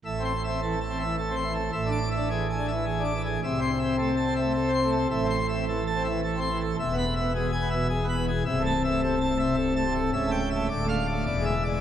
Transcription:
<<
  \new Staff \with { instrumentName = "Pipe organ" } { \time 3/4 \key a \minor \tempo 4 = 107 \tuplet 3/2 { e''8 c'''8 e''8 a'8 a''8 e''8 a'8 c'''8 a'8 } | \tuplet 3/2 { e''8 d'''8 e''8 gis'8 gis''8 e''8 gis'8 d'''8 gis'8 } | \tuplet 3/2 { e''8 c'''8 e''8 a'8 a''8 e''8 a'8 c'''8 a'8 } | \tuplet 3/2 { e''8 c'''8 e''8 a'8 a''8 e''8 a'8 c'''8 a'8 } |
\tuplet 3/2 { e''8 b''8 e''8 gis'8 gis''8 e''8 gis'8 b''8 gis'8 } | \tuplet 3/2 { e''8 a''8 e''8 a'8 a''8 e''8 a'8 a''8 a'8 } | \tuplet 3/2 { e''8 g''8 e''8 d''8 f''8 d''8 d''8 e''8 d''8 } | }
  \new Staff \with { instrumentName = "Pipe organ" } { \clef bass \time 3/4 \key a \minor << { a,16 c'16 r16 c'16 e16 r16 c'16 e16 r16 c'16 e16 r16 | a,16 d'16 r16 d'16 e16 r16 d'16 e16 r16 d'16 e16 r16 | c16 c'16 r16 c'16 a16 r16 c'16 a16 r16 c'16 a16 r16 | a,16 c'16 r16 c'16 e16 r16 c'16 e16 r16 c'16 e16 r16 |
e,16 b16 r16 b16 b,16 r16 b16 b,16 r16 b16 b,16 r16 | c,16 a16 r16 a16 c16 r16 a16 c16 r16 a16 c16 r16 | cis,16 a16 r16 a16 d,16 a16 r16 a16 e,16 gis16 r16 gis16 | } \\ { a,,2. | a,,2. | c,2. | a,,2. |
e,,2. | c,,2. | cis,,4 d,,4 e,,4 | } >> }
>>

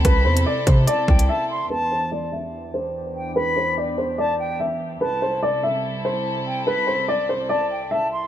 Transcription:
<<
  \new Staff \with { instrumentName = "Flute" } { \time 4/4 \key e \minor \tempo 4 = 145 b''4 r4 a''8 g''8 a''8 c'''8 | a''4 r2 r8 g''8 | b''4 r4 a''8 g''8 r4 | a''4 r2 r8 g''8 |
b''4 r4 a''8 g''8 a''8 c'''8 | }
  \new Staff \with { instrumentName = "Upright piano" } { \time 4/4 \key e \minor b'8 c''8 d''8 c''8 d''4 e''4 | b'8 c''8 d''8 e''4 c''4. | b'8 c''8 d''8 c''8 d''4 e''4 | b'8 c''8 d''8 e''4 c''4. |
b'8 c''8 d''8 c''8 d''4 e''4 | }
  \new Staff \with { instrumentName = "String section" } { \time 4/4 \key e \minor <c c' e' a'>1 | <e, e d' g'>1~ | <e, e d' g'>1 | <c, c e' a'>1~ |
<c, c e' a'>1 | }
  \new Staff \with { instrumentName = "Grand piano" } { \clef bass \time 4/4 \key e \minor <c e g a e'>1 | r1 | r1 | r1 |
r1 | }
  \new Staff \with { instrumentName = "808-style bass" } { \clef bass \time 4/4 \key e \minor c,8 e,8 r8 c8 r8 c,8 r4 | r1 | r1 | r1 |
r1 | }
  \new DrumStaff \with { instrumentName = "Drums" } \drummode { \time 4/4 <hh bd>8. hh16 r8 <hh bd>8 hh8 bd16 hh16 r4 | r4 r4 r4 r4 | r4 r4 r4 r4 | r4 r4 r4 r4 |
r4 r4 r4 r4 | }
>>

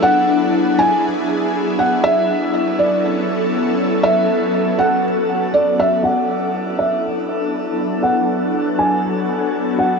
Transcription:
<<
  \new Staff \with { instrumentName = "Felt piano" } { \time 4/4 \key d \lydian \tempo 4 = 120 fis''4. gis''8 r4. fis''8 | e''4. d''8 r2 | e''4. fis''8 r4 d''8 e''8 | fis''4. e''8 r2 |
fis''4. gis''8 r4. fis''8 | }
  \new Staff \with { instrumentName = "Ambient pad" } { \time 4/4 \key d \lydian << { <fis b d' gis'>1 | <fis b cis' a'>1~ | <fis b cis' a'>1 | <fis b d' a'>1~ |
<fis b d' a'>1 | } \\ { e'1~ | e'1 | fis'1 | e'1 |
fis'1 | } >> }
>>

